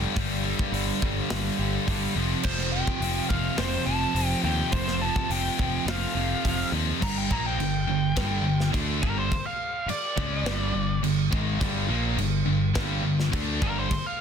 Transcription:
Already playing: G2 D3 G3
0.15 G1 G2 D3 G3, kick, open hi-hat
0.44 G2 D3 G3
0.59 kick
0.72 G1 G2 D3 G3, open hi-hat
1.01 G1 G2 D3 G3, kick
1.30 G1 G2 D3 G3, snare, open hi-hat
1.59 G1 G2 D3 G3
1.63 G2
1.86 G1 G2 D3 G3, kick, open hi-hat
2.15 F1 F2 C3 F3
2.43 F1 F2 C3 F3 C5, kick, crash
2.58 snare
2.72 F2 C3 F3 G5
2.87 kick
3.00 F1 F2 C3 F3, open hi-hat
3.29 F1 F2 C3 F3 F5, kick
3.57 F1 F2 C3 F3 C5, snare, open hi-hat
3.86 F1 F2 C3 F3 A5
4.15 F1 F2 C3 F3, open hi-hat
4.28 G5
4.43 D#2 F2 C3 F3 G5
4.72 F1 F2 C3 F3 C5, kick, open hi-hat
4.88 snare
5.01 F2 C3 F3 A5
5.16 kick
5.30 F1 F2 C3 F3 G5, open hi-hat
5.59 F1 F2 C3 F3, kick
5.86 F1 F2 C3 F3 F5, snare, open hi-hat
6.15 F1 F2 C3 F3
6.45 F1 F2 C3 F3, kick, open hi-hat
6.72 D#2 F2 C3 F3
7.01 G1 G2 D3 G3 A#5, kick, crash
7.18 G5
7.30 A#1 A#2 F3 A#3 A#5, kick
7.46 G5
7.58 G1 G2 D3 G5, crash
7.87 G1 G2 D3
8.16 G1 G2 D3 G3, kick, snare, crash
8.42 G1 G2 D3
8.60 snare
8.73 D2 D3 A3 D4, kick, crash
9.02 G1 G2 D3 G3 A#4, kick
9.18 C5
9.32 kick, crash
9.46 F5
9.86 D5, muted picked electric bass stroke, muted overdriven electric guitar stroke, muted distorted electric guitar stroke, crash
10.17 C#2 C#3 G#3 C#4, kick
10.43 G1 G2 D3 G3, snare, crash
10.73 G1 G2 D3
11.03 G1 G2 D3, crash
11.32 G#1 G#2 D#3 G#3, kick
11.60 G1 G2 D3 G3, kick, crash
11.89 A#1 A#2 F3 A#3
12.16 G1 G2 D3, crash
12.46 G1 G2 D3
12.75 G2 D3 G3, kick, snare, crash
13.03 G1 G2 D3
13.20 snare
13.32 D2 D3 A3 D4, kick, crash
13.61 G1 G2 D3 G3 A#4, kick
13.78 C5
13.91 kick, crash
14.06 F5

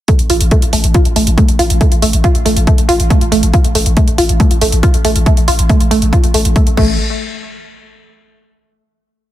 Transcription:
0.08 A3, kick, closed hi-hat
0.19 A1, closed hi-hat
0.30 A1 F4, open hi-hat
0.41 A1, closed hi-hat
0.51 A3, kick, closed hi-hat
0.62 A1, closed hi-hat
0.73 A1 A3, open hi-hat
0.84 A1, closed hi-hat
0.94 F4, kick, closed hi-hat
1.05 A1, closed hi-hat
1.16 A1 A3, open hi-hat
1.27 A1, closed hi-hat
1.38 A3, kick, closed hi-hat
1.48 A1, closed hi-hat
1.59 A1 F4, open hi-hat
1.70 A1, closed hi-hat
1.81 A3, kick, closed hi-hat
1.92 A1, closed hi-hat
2.02 A1 A3, open hi-hat
2.13 A1, closed hi-hat
2.24 F4, kick, closed hi-hat
2.35 A1, closed hi-hat
2.46 A1 A3, open hi-hat
2.56 A1, closed hi-hat
2.67 A3, kick, closed hi-hat
2.78 A1, closed hi-hat
2.89 A1 F4, open hi-hat
3.00 A1, closed hi-hat
3.10 A3, kick, closed hi-hat
3.21 A1, closed hi-hat
3.32 A1 A3, open hi-hat
3.43 A1, closed hi-hat
3.54 F4, kick, closed hi-hat
3.64 A1, closed hi-hat
3.75 A1 A3, open hi-hat
3.86 A1, closed hi-hat
3.97 A3, kick, closed hi-hat
4.08 A1, closed hi-hat
4.18 A1 F4, open hi-hat
4.29 A1, closed hi-hat
4.40 A3, kick, closed hi-hat
4.51 A1, closed hi-hat
4.61 A1 A3, open hi-hat
4.72 A1, closed hi-hat
4.83 F4, kick, closed hi-hat
4.94 A1, closed hi-hat
5.05 A1 A3, open hi-hat
5.16 A1, closed hi-hat
5.26 A3, kick, closed hi-hat
5.37 A1, closed hi-hat
5.48 A1 F4, open hi-hat
5.59 A1, closed hi-hat
5.69 A3, kick, closed hi-hat
5.80 A1, closed hi-hat
5.91 A1 A3, open hi-hat
6.02 A1, closed hi-hat
6.13 F4, kick, closed hi-hat
6.24 A1, closed hi-hat
6.34 A1 A3, open hi-hat
6.45 A1, closed hi-hat
6.56 A3, kick, closed hi-hat
6.67 A1, closed hi-hat
6.77 A1 A3, kick, crash

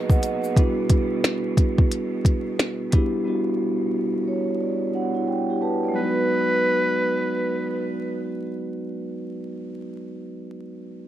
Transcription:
Already playing: B2 G#3 D#4 F#4 G#4 B4 D#5
0.10 D#5 F#5, kick, shaker
0.23 B4 D#5, closed hi-hat, shaker
0.43 G#4 B4, shaker
0.55 G3 B3 D4 E4 F#4, kick, closed hi-hat
0.90 kick, closed hi-hat
1.24 snare, closed hi-hat
1.57 kick, closed hi-hat
1.78 kick
1.92 closed hi-hat
2.25 kick, closed hi-hat
2.59 snare, closed hi-hat
2.91 G3 B3 D4 E4 G4, kick, closed hi-hat
3.24 G3 B3 D4 E4 F#4
4.28 C#5
4.60 D5
4.95 B3 D4 F#5
5.15 E4
5.28 G5
5.50 E4 G4
5.62 G4 B4 A5
5.84 B4 D5
5.89 F#3 G#3
5.96 B3 D#4 B4
6.03 F#4

